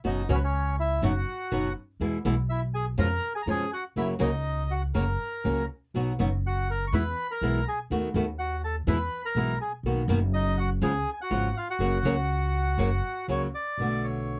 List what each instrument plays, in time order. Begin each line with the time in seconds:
0.04 upright bass F#1, nylon-string guitar B2 F#3 B3 C#4 F#4, bandoneon D#4
0.08 bandoneon D#5
0.29 upright bass C#2, nylon-string guitar B2 F#3 B3 C#4 F#4, bandoneon C#4 C#5
0.35 bandoneon B4
0.44 bandoneon C#4 C#5
0.80 bandoneon E4 E5
1.02 upright bass F#1, nylon-string guitar B2 F#3 B3 D#4 F#4, bandoneon F#4 F#5
1.51 upright bass F#1, nylon-string guitar B2 F#3 B3 D#4 F#4
2.00 upright bass E2, nylon-string guitar B2 E3 G#3 B3 E4
2.25 upright bass B1, nylon-string guitar B2 E3 G#3 B3 E4
2.50 bandoneon E4 E5
2.74 bandoneon G#4 G#5
2.98 upright bass F2, nylon-string guitar B2 F3 G#3 C#4 F4, bandoneon A#4 A#5
3.35 bandoneon G#4 G#5
3.42 upright bass F2, bandoneon A#5
3.47 nylon-string guitar B2 F3 G#3 C#4 F4, bandoneon G#4 G#5
3.73 bandoneon F#4 F#5
3.96 upright bass F#1, nylon-string guitar C#3 F#3 A#3 C#4 F#4, bandoneon E4 E5
4.19 upright bass C#2, nylon-string guitar C#3 F#3 A#3 C#4 F#4, bandoneon D#4 D#5
4.71 bandoneon F#4 F#5
4.94 upright bass F#1, nylon-string guitar C#3 F#3 A#3 C#4 F#4, bandoneon A#4 A#5
5.44 upright bass C#2, nylon-string guitar C#3 F#3 A#3 C#4 F#4
5.94 upright bass B1, nylon-string guitar B2 F#3 B3 D#4 F#4
6.19 upright bass F#1, nylon-string guitar B2 F#3 B3 D#4 F#4
6.46 bandoneon F#4 F#5
6.71 bandoneon A#4 A#5
6.87 bandoneon C#6
6.92 upright bass E2, nylon-string guitar B2 E3 G#3 B3 E4, bandoneon B4 B5
7.31 bandoneon A#4 A#5
7.41 upright bass B1, nylon-string guitar B2 E3 G#3 B3 E4
7.68 bandoneon G#4 G#5
7.90 upright bass D#2, nylon-string guitar D#3 A3 B3 F#4
8.14 upright bass D#2, nylon-string guitar D#3 A3 B3 F#4
8.39 bandoneon F#4 F#5
8.64 bandoneon A4 A5
8.87 upright bass E2, nylon-string guitar B2 E3 G#3 B3 E4, bandoneon B4 B5
9.25 bandoneon A#4 A#5
9.35 upright bass B1, nylon-string guitar B2 E3 G#3 B3 E4
9.61 bandoneon G#4 G#5
9.83 upright bass B1, nylon-string guitar B2 D#3 A#3 B3 F#4
10.08 upright bass F#1, nylon-string guitar B2 D#3 A#3 B3 F#4
10.34 bandoneon D#4 D#5
10.58 bandoneon F#4 F#5
10.82 upright bass C#2, nylon-string guitar C#3 F3 G#3 B3 F4, bandoneon G#4 G#5
11.14 bandoneon G#5
11.21 bandoneon F#4 F#5
11.30 upright bass G#1, nylon-string guitar C#3 F3 G#3 B3 F4
11.57 bandoneon F4 F5
11.70 bandoneon F#4 F#5
11.79 upright bass F#1, nylon-string guitar C#3 F#3 A#3 C#4 F#4
12.03 upright bass C#2, nylon-string guitar C#3 F#3 A#3 C#4 F#4
12.78 upright bass F#1, nylon-string guitar C#3 F#3 A#3 C#4 F#4
13.28 upright bass C#2, nylon-string guitar C#3 F#3 A#3 C#4 F#4, bandoneon C#5
13.55 bandoneon D5
13.78 upright bass B1, nylon-string guitar B2 D3 A3 B3
13.82 nylon-string guitar F#4
14.04 bandoneon C#5